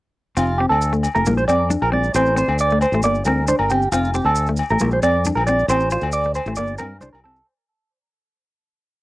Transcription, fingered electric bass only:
0, 0, Header, 1, 2, 480
1, 0, Start_track
1, 0, Key_signature, -1, "major"
1, 0, Tempo, 444115
1, 407, Time_signature, 4, 2, 24, 8
1, 9754, End_track
2, 0, Start_track
2, 0, Title_t, "Fingered electric bass"
2, 0, Program_c, 0, 33
2, 398, Note_on_c, 0, 29, 99
2, 696, Note_off_c, 0, 29, 0
2, 759, Note_on_c, 0, 38, 86
2, 1152, Note_off_c, 0, 38, 0
2, 1252, Note_on_c, 0, 29, 90
2, 1346, Note_off_c, 0, 29, 0
2, 1368, Note_on_c, 0, 34, 94
2, 1562, Note_off_c, 0, 34, 0
2, 1597, Note_on_c, 0, 41, 75
2, 1895, Note_off_c, 0, 41, 0
2, 1966, Note_on_c, 0, 34, 83
2, 2256, Note_off_c, 0, 34, 0
2, 2319, Note_on_c, 0, 33, 108
2, 2615, Note_off_c, 0, 33, 0
2, 2681, Note_on_c, 0, 38, 86
2, 3072, Note_off_c, 0, 38, 0
2, 3156, Note_on_c, 0, 33, 88
2, 3255, Note_off_c, 0, 33, 0
2, 3271, Note_on_c, 0, 31, 102
2, 3471, Note_off_c, 0, 31, 0
2, 3513, Note_on_c, 0, 38, 85
2, 3811, Note_off_c, 0, 38, 0
2, 3882, Note_on_c, 0, 31, 78
2, 4172, Note_off_c, 0, 31, 0
2, 4235, Note_on_c, 0, 29, 96
2, 4531, Note_off_c, 0, 29, 0
2, 4588, Note_on_c, 0, 38, 86
2, 4983, Note_off_c, 0, 38, 0
2, 5083, Note_on_c, 0, 33, 94
2, 5177, Note_off_c, 0, 33, 0
2, 5195, Note_on_c, 0, 34, 95
2, 5391, Note_off_c, 0, 34, 0
2, 5430, Note_on_c, 0, 41, 81
2, 5728, Note_off_c, 0, 41, 0
2, 5788, Note_on_c, 0, 34, 73
2, 6083, Note_off_c, 0, 34, 0
2, 6140, Note_on_c, 0, 33, 109
2, 6442, Note_off_c, 0, 33, 0
2, 6504, Note_on_c, 0, 38, 87
2, 6900, Note_off_c, 0, 38, 0
2, 6981, Note_on_c, 0, 33, 95
2, 7084, Note_off_c, 0, 33, 0
2, 7103, Note_on_c, 0, 31, 94
2, 7304, Note_off_c, 0, 31, 0
2, 7353, Note_on_c, 0, 43, 79
2, 7550, Note_off_c, 0, 43, 0
2, 7591, Note_on_c, 0, 36, 101
2, 7694, Note_off_c, 0, 36, 0
2, 9754, End_track
0, 0, End_of_file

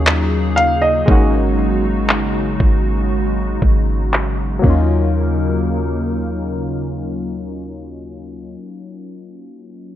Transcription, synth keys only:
0, 0, Header, 1, 2, 480
1, 0, Start_track
1, 0, Key_signature, -6, "minor"
1, 0, Tempo, 1016949
1, 508, Time_signature, 4, 2, 24, 8
1, 4700, End_track
2, 0, Start_track
2, 0, Title_t, "Synth keys"
2, 0, Program_c, 0, 88
2, 0, Control_c, 0, 64, 127
2, 0, Note_on_c, 0, 54, 47
2, 0, Note_on_c, 0, 58, 45
2, 0, Note_on_c, 0, 61, 46
2, 0, Note_on_c, 0, 63, 44
2, 0, Note_on_c, 0, 68, 51
2, 499, Note_on_c, 0, 56, 64
2, 500, Note_off_c, 0, 58, 0
2, 506, Note_on_c, 0, 58, 58
2, 507, Note_off_c, 0, 54, 0
2, 507, Note_off_c, 0, 61, 0
2, 512, Note_off_c, 0, 63, 0
2, 512, Note_on_c, 0, 61, 59
2, 514, Note_off_c, 0, 68, 0
2, 514, Control_c, 0, 64, 0
2, 518, Note_on_c, 0, 63, 61
2, 525, Note_on_c, 0, 66, 70
2, 593, Control_c, 0, 64, 127
2, 2165, Note_off_c, 0, 56, 0
2, 2168, Note_off_c, 0, 58, 0
2, 2168, Note_on_c, 0, 54, 71
2, 2171, Note_off_c, 0, 61, 0
2, 2174, Note_off_c, 0, 63, 0
2, 2178, Note_off_c, 0, 66, 0
2, 2180, Note_on_c, 0, 58, 68
2, 2193, Note_on_c, 0, 61, 67
2, 2195, Control_c, 0, 64, 0
2, 2205, Note_on_c, 0, 63, 68
2, 2218, Note_on_c, 0, 65, 80
2, 2272, Control_c, 0, 64, 127
2, 2434, Control_c, 0, 64, 0
2, 2529, Control_c, 0, 64, 127
2, 4019, Note_off_c, 0, 54, 0
2, 4032, Note_off_c, 0, 58, 0
2, 4045, Note_off_c, 0, 61, 0
2, 4057, Note_off_c, 0, 63, 0
2, 4069, Note_off_c, 0, 65, 0
2, 4700, End_track
0, 0, End_of_file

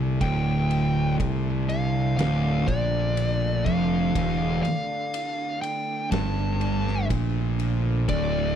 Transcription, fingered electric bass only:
0, 0, Header, 1, 2, 480
1, 0, Start_track
1, 0, Key_signature, -1, "minor"
1, 0, Tempo, 985222
1, 102, Time_signature, 4, 2, 24, 8
1, 4168, End_track
2, 0, Start_track
2, 0, Title_t, "Fingered electric bass"
2, 0, Program_c, 0, 33
2, 0, Note_on_c, 0, 36, 95
2, 85, Note_off_c, 0, 36, 0
2, 101, Note_on_c, 0, 26, 94
2, 563, Note_off_c, 0, 26, 0
2, 584, Note_on_c, 0, 36, 93
2, 1045, Note_off_c, 0, 36, 0
2, 1058, Note_on_c, 0, 26, 84
2, 1284, Note_off_c, 0, 26, 0
2, 1303, Note_on_c, 0, 34, 93
2, 1764, Note_off_c, 0, 34, 0
2, 1782, Note_on_c, 0, 29, 95
2, 2006, Note_off_c, 0, 29, 0
2, 2022, Note_on_c, 0, 28, 95
2, 2246, Note_off_c, 0, 28, 0
2, 2981, Note_on_c, 0, 31, 90
2, 3441, Note_off_c, 0, 31, 0
2, 3461, Note_on_c, 0, 34, 95
2, 3920, Note_off_c, 0, 34, 0
2, 3940, Note_on_c, 0, 26, 93
2, 4168, Note_off_c, 0, 26, 0
2, 4168, End_track
0, 0, End_of_file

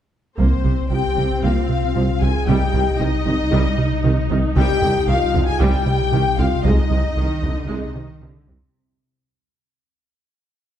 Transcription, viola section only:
0, 0, Header, 1, 2, 480
1, 0, Start_track
1, 0, Tempo, 521739
1, 359, Time_signature, 4, 2, 24, 8
1, 9934, End_track
2, 0, Start_track
2, 0, Title_t, "Viola section"
2, 0, Program_c, 0, 48
2, 352, Note_on_c, 0, 58, 54
2, 353, Note_on_c, 0, 60, 51
2, 578, Note_off_c, 0, 58, 0
2, 588, Note_on_c, 0, 48, 36
2, 662, Note_off_c, 0, 48, 0
2, 832, Note_on_c, 0, 53, 42
2, 906, Note_off_c, 0, 53, 0
2, 1074, Note_on_c, 0, 48, 35
2, 1148, Note_off_c, 0, 48, 0
2, 1315, Note_on_c, 0, 58, 53
2, 1540, Note_off_c, 0, 58, 0
2, 1801, Note_on_c, 0, 53, 46
2, 1875, Note_off_c, 0, 53, 0
2, 2038, Note_on_c, 0, 48, 48
2, 2111, Note_off_c, 0, 48, 0
2, 2239, Note_off_c, 0, 60, 0
2, 2283, Note_on_c, 0, 63, 60
2, 2286, Note_on_c, 0, 55, 67
2, 2506, Note_off_c, 0, 55, 0
2, 2522, Note_on_c, 0, 51, 44
2, 2595, Note_off_c, 0, 51, 0
2, 2757, Note_on_c, 0, 51, 55
2, 2830, Note_off_c, 0, 51, 0
2, 3001, Note_on_c, 0, 51, 49
2, 3074, Note_off_c, 0, 51, 0
2, 3240, Note_on_c, 0, 55, 70
2, 3463, Note_off_c, 0, 55, 0
2, 3728, Note_on_c, 0, 51, 61
2, 3802, Note_off_c, 0, 51, 0
2, 3967, Note_on_c, 0, 51, 65
2, 4041, Note_off_c, 0, 51, 0
2, 4198, Note_on_c, 0, 55, 78
2, 4422, Note_off_c, 0, 55, 0
2, 4437, Note_on_c, 0, 50, 59
2, 4511, Note_off_c, 0, 50, 0
2, 4674, Note_on_c, 0, 51, 61
2, 4748, Note_off_c, 0, 51, 0
2, 4915, Note_on_c, 0, 50, 51
2, 4989, Note_off_c, 0, 50, 0
2, 5155, Note_on_c, 0, 55, 88
2, 5380, Note_off_c, 0, 55, 0
2, 5638, Note_on_c, 0, 51, 65
2, 5712, Note_off_c, 0, 51, 0
2, 5872, Note_on_c, 0, 50, 57
2, 5946, Note_off_c, 0, 50, 0
2, 6101, Note_off_c, 0, 63, 0
2, 6112, Note_on_c, 0, 63, 64
2, 6113, Note_on_c, 0, 56, 67
2, 6339, Note_off_c, 0, 56, 0
2, 6355, Note_on_c, 0, 48, 48
2, 6429, Note_off_c, 0, 48, 0
2, 6594, Note_on_c, 0, 51, 54
2, 6667, Note_off_c, 0, 51, 0
2, 6833, Note_on_c, 0, 48, 54
2, 6907, Note_off_c, 0, 48, 0
2, 7074, Note_on_c, 0, 56, 77
2, 7300, Note_off_c, 0, 56, 0
2, 7559, Note_on_c, 0, 51, 53
2, 7633, Note_off_c, 0, 51, 0
2, 7796, Note_on_c, 0, 48, 52
2, 7817, Note_off_c, 0, 63, 0
2, 7870, Note_off_c, 0, 48, 0
2, 9934, End_track
0, 0, End_of_file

